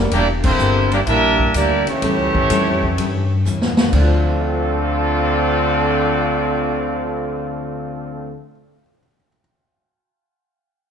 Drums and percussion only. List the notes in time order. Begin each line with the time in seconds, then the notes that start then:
0.11 kick, ride
0.44 kick, crash
0.58 hi-hat pedal
0.92 ride
1.07 kick, ride
1.40 kick
1.54 kick, hi-hat pedal, ride
1.87 ride
2.02 kick, ride
2.35 kick
2.50 kick, hi-hat pedal, ride
2.83 kick
2.98 kick, ride
3.46 hi-hat pedal
3.62 snare
3.77 snare
3.93 kick, crash